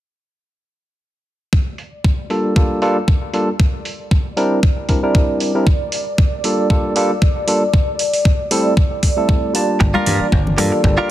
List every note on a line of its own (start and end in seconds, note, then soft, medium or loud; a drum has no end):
1.53 9.79 D5 medium
1.53 kick loud
1.78 open hi-hat medium
2.04 kick loud
2.30 2.53 G3 medium
2.30 2.53 A#3 medium
2.30 2.53 D4 medium
2.30 2.53 F4 medium
2.30 2.54 A4 medium
2.30 open hi-hat medium
2.56 2.79 G3 medium
2.56 2.79 A#3 medium
2.56 2.79 D4 medium
2.56 2.79 F4 medium
2.56 2.80 A4 medium
2.56 kick loud
2.81 2.96 G3 medium
2.81 2.96 A#3 medium
2.81 2.96 D4 medium
2.81 2.97 F4 medium
2.81 2.97 A4 medium
2.81 open hi-hat medium
3.08 kick loud
3.33 3.48 G3 medium
3.33 3.48 A#3 medium
3.33 3.48 D4 medium
3.33 3.48 F4 medium
3.33 3.49 A4 medium
3.33 open hi-hat loud
3.60 kick loud
3.85 open hi-hat medium
4.11 kick loud
4.36 4.59 G3 medium
4.36 4.59 C4 medium
4.36 4.59 D4 medium
4.36 4.59 E4 medium
4.36 4.59 A#4 medium
4.36 open hi-hat loud
4.63 kick loud
4.89 5.00 G3 medium
4.89 5.00 C4 medium
4.89 5.00 D4 medium
4.89 5.00 E4 medium
4.89 5.00 A#4 medium
4.89 kick medium
4.89 open hi-hat medium
5.03 5.51 G3 medium
5.03 5.51 C4 medium
5.03 5.51 D4 medium
5.03 5.52 E4 medium
5.03 5.52 A#4 medium
5.15 kick loud
5.40 open hi-hat loud
5.55 5.65 G3 medium
5.55 5.65 C4 medium
5.55 5.65 D4 medium
5.55 5.65 E4 medium
5.55 5.65 A#4 medium
5.67 kick loud
5.92 open hi-hat loud
6.18 kick loud
6.44 6.67 G3 medium
6.44 6.67 A#3 medium
6.44 6.67 D4 medium
6.44 6.67 F4 medium
6.44 6.68 A4 medium
6.44 open hi-hat loud
6.70 6.93 G3 medium
6.70 6.93 A#3 medium
6.70 6.93 D4 medium
6.70 6.93 F4 medium
6.70 6.94 A4 medium
6.70 kick loud
6.96 7.10 G3 medium
6.96 7.10 A#3 medium
6.96 7.11 D4 medium
6.96 7.11 F4 medium
6.96 7.11 A4 medium
6.96 open hi-hat loud
7.22 kick loud
7.47 7.62 G3 medium
7.47 7.62 A#3 medium
7.47 7.62 D4 medium
7.47 7.62 F4 medium
7.47 7.62 A4 medium
7.47 open hi-hat loud
7.74 kick loud
7.99 open hi-hat loud
8.13 open hi-hat medium
8.25 kick loud
8.51 8.73 G3 medium
8.51 8.73 A3 medium
8.51 8.73 C4 medium
8.51 8.73 E4 medium
8.51 8.73 A4 loud
8.51 open hi-hat loud
8.77 kick loud
9.03 kick medium
9.03 open hi-hat medium
9.17 9.52 G3 medium
9.17 9.52 A3 medium
9.17 9.52 C4 medium
9.17 9.52 E4 medium
9.17 9.52 A4 medium
9.29 kick loud
9.54 10.55 G3 medium
9.54 10.55 A#3 medium
9.54 10.55 D4 medium
9.54 10.56 F4 medium
9.54 10.56 A5 medium
9.54 open hi-hat loud
9.80 9.92 G1 medium
9.80 11.11 D5 medium
9.80 muted clean electric guitar stroke loud
9.80 kick loud
9.94 10.26 F4 medium
9.94 10.26 G4 medium
9.94 10.26 A#4 medium
9.94 high conga medium
10.06 10.18 G2 medium
10.06 open hi-hat medium
10.06 low conga medium
10.20 muted slap bass stroke soft
10.32 10.54 G1 medium
10.32 kick loud
10.47 low conga medium
10.57 10.70 G2 medium
10.57 10.81 G3 medium
10.57 10.81 A#3 medium
10.57 10.81 D4 medium
10.57 10.81 F4 medium
10.57 10.81 A4 medium
10.57 muted clean electric guitar stroke medium
10.57 open hi-hat loud
10.57 high conga medium
10.72 muted clean electric guitar stroke soft
10.83 10.96 G1 medium
10.83 11.07 G3 medium
10.83 11.07 A#3 medium
10.83 11.07 D4 medium
10.83 11.07 F4 medium
10.83 11.07 A4 medium
10.83 kick loud
10.98 11.11 F4 loud
10.98 11.11 G4 medium
10.98 11.11 A#4 loud